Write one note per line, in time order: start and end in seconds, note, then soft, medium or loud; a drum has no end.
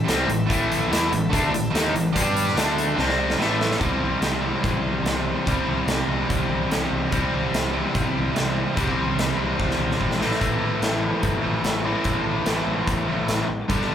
0.00 0.26 C3 medium
0.00 2.14 C4 medium
0.00 2.14 E4 medium
0.00 2.14 A4 medium
0.00 2.13 E5 medium
0.05 0.28 C2 medium
0.05 0.26 G3 medium
0.05 0.27 C4 loud
0.05 closed hi-hat medium
0.09 snare loud
0.27 0.48 A1 medium
0.27 0.44 A2 medium
0.27 0.44 E3 medium
0.27 closed hi-hat medium
0.46 0.88 A2 medium
0.46 0.87 E3 medium
0.46 0.89 A3 medium
0.50 0.88 A1 medium
0.50 kick loud
0.50 closed hi-hat medium
0.72 closed hi-hat medium
0.89 1.10 E2 medium
0.89 1.08 E3 medium
0.89 1.09 B3 medium
0.89 1.10 E4 loud
0.93 snare loud
0.93 closed hi-hat medium
1.10 1.31 A1 medium
1.10 1.27 A2 medium
1.10 1.27 E3 medium
1.10 closed hi-hat medium
1.29 1.52 D2 medium
1.29 1.50 D3 medium
1.29 1.51 A3 loud
1.29 1.51 D4 loud
1.29 kick loud
1.34 closed hi-hat medium
1.51 1.72 A1 medium
1.51 1.68 A2 medium
1.51 1.69 E3 medium
1.51 closed hi-hat medium
1.71 1.92 D#2 medium
1.71 1.91 D#3 medium
1.71 1.91 A#3 medium
1.71 1.93 D#4 loud
1.75 1.95 D#4 medium
1.75 snare loud
1.75 closed hi-hat medium
1.91 2.13 A1 medium
1.91 2.09 A2 medium
1.91 2.10 E3 medium
1.96 2.12 E3 medium
1.96 closed hi-hat medium
2.13 2.54 G2 medium
2.13 2.54 G3 loud
2.13 2.54 D4 medium
2.13 2.56 D4 medium
2.13 2.55 G4 loud
2.13 2.56 G4 medium
2.13 2.57 D5 medium
2.13 kick loud
2.13 closed hi-hat loud
2.37 closed hi-hat medium
2.48 snare soft
2.54 2.95 D2 loud
2.54 2.95 D3 medium
2.54 2.96 A3 medium
2.54 2.96 D4 loud
2.54 snare loud
2.54 closed hi-hat loud
2.58 2.99 D4 medium
2.58 2.98 A4 medium
2.58 2.98 D5 medium
2.78 closed hi-hat medium
2.96 3.36 C2 medium
2.96 3.37 C3 medium
2.96 3.38 G3 loud
2.96 3.38 C4 loud
2.96 3.35 C4 medium
2.96 3.39 G4 medium
2.96 3.36 C5 medium
2.96 snare medium
3.09 snare medium
3.30 snare medium
3.37 3.77 A1 medium
3.37 3.78 A2 medium
3.37 3.79 E3 loud
3.37 3.79 A3 medium
3.37 3.80 A3 medium
3.37 3.79 C4 medium
3.37 3.79 E4 medium
3.37 3.79 C5 medium
3.41 snare medium
3.61 snare medium
3.71 snare medium
3.78 3.95 C2 medium
3.78 4.43 C3 medium
3.78 5.46 E3 medium
3.78 4.42 G3 medium
3.78 4.41 C4 medium
3.78 kick loud
3.78 closed hi-hat medium
3.83 5.48 E4 medium
4.00 4.15 C2 medium
4.20 4.51 C2 medium
4.20 snare loud
4.20 closed hi-hat medium
4.41 5.03 C3 medium
4.41 5.04 G3 medium
4.41 5.06 C4 medium
4.63 4.78 A1 medium
4.63 kick loud
4.63 closed hi-hat medium
4.81 4.97 C2 medium
5.03 5.34 C2 medium
5.03 5.46 C3 medium
5.03 5.48 G3 medium
5.03 5.48 C4 medium
5.03 snare loud
5.03 closed hi-hat medium
5.46 5.62 C2 medium
5.46 6.11 C3 medium
5.46 7.12 E3 medium
5.46 6.10 G3 medium
5.46 6.08 C4 medium
5.46 7.14 E4 medium
5.46 kick loud
5.46 closed hi-hat medium
5.67 5.82 C2 medium
5.87 6.02 C2 medium
5.87 snare loud
5.87 closed hi-hat medium
6.08 6.23 C2 medium
6.08 6.69 C3 medium
6.08 6.71 G3 medium
6.08 6.72 C4 medium
6.30 6.44 C2 medium
6.30 kick loud
6.30 closed hi-hat medium
6.50 6.65 C2 medium
6.70 6.86 C2 medium
6.70 7.10 C3 medium
6.70 7.11 G3 medium
6.70 7.13 C4 medium
6.70 snare loud
6.70 closed hi-hat medium
6.92 7.06 C2 medium
7.10 7.27 C2 medium
7.10 7.74 C3 medium
7.10 8.77 E3 medium
7.10 7.73 G3 medium
7.10 7.72 C4 loud
7.10 kick loud
7.10 closed hi-hat medium
7.15 8.80 E4 medium
7.33 7.47 C2 medium
7.53 7.83 C2 medium
7.53 snare loud
7.53 closed hi-hat medium
7.72 8.31 C3 medium
7.72 8.33 G3 medium
7.72 8.35 C4 medium
7.95 8.10 A1 medium
7.95 kick loud
7.95 closed hi-hat medium
8.16 8.30 C2 medium
8.32 8.65 C2 medium
8.32 8.72 C3 medium
8.32 8.74 G3 medium
8.32 8.75 C4 medium
8.32 closed hi-hat medium
8.37 snare loud
8.73 8.92 C2 medium
8.73 9.35 C3 medium
8.73 10.20 E3 medium
8.73 9.36 G3 loud
8.73 9.35 C4 medium
8.73 kick loud
8.73 closed hi-hat medium
8.80 10.23 E4 medium
8.88 kick medium
8.97 9.12 C2 medium
9.17 9.32 C2 medium
9.17 snare loud
9.17 closed hi-hat medium
9.35 9.53 C2 medium
9.35 9.98 C3 medium
9.35 9.98 G3 medium
9.35 10.01 C4 medium
9.60 9.74 C2 medium
9.60 kick loud
9.60 high tom medium
9.71 snare medium
9.78 9.93 C2 medium
9.78 mid tom medium
9.91 snare medium
9.99 10.15 G#1 medium
9.99 10.18 C3 medium
9.99 10.19 G3 medium
9.99 10.21 C4 medium
9.99 kick medium
10.11 snare medium
10.19 10.35 A1 medium
10.19 10.81 A2 medium
10.19 10.83 E3 medium
10.19 10.84 A3 medium
10.19 11.84 C4 medium
10.19 11.85 E4 medium
10.19 snare medium
10.31 snare medium
10.41 10.56 A1 medium
10.41 kick loud
10.41 closed hi-hat medium
10.60 10.76 A1 medium
10.80 11.11 A1 medium
10.80 11.42 A2 medium
10.80 11.42 E3 medium
10.80 11.41 A3 medium
10.80 snare loud
10.80 closed hi-hat medium
11.23 11.38 G1 medium
11.23 kick loud
11.23 closed hi-hat medium
11.42 11.58 A1 medium
11.42 11.82 A2 medium
11.42 11.83 E3 medium
11.42 11.82 A3 medium
11.64 11.94 A1 medium
11.64 snare loud
11.64 closed hi-hat medium
11.83 12.43 A2 medium
11.83 12.45 E3 medium
11.83 12.46 A3 medium
11.83 13.48 C4 medium
11.83 13.49 E4 medium
12.04 12.20 A1 medium
12.04 kick loud
12.04 closed hi-hat medium
12.26 12.41 A1 medium
12.45 12.61 A1 medium
12.45 13.06 A2 medium
12.45 13.07 E3 medium
12.45 13.06 A3 medium
12.45 snare loud
12.45 closed hi-hat medium
12.67 12.81 A1 medium
12.87 13.02 A1 medium
12.87 kick loud
12.87 closed hi-hat medium
13.07 13.23 A1 medium
13.07 13.49 A2 medium
13.07 13.48 E3 medium
13.07 13.47 A3 medium
13.27 13.43 A1 medium
13.27 snare loud
13.27 closed hi-hat medium
13.48 13.63 A1 medium
13.68 13.84 G1 medium
13.68 13.95 G2 medium
13.68 13.95 D3 medium
13.68 13.95 G3 medium
13.68 13.95 B3 medium
13.68 13.95 D4 loud
13.68 kick loud
13.68 closed hi-hat medium
13.81 snare soft
13.89 13.95 G1 medium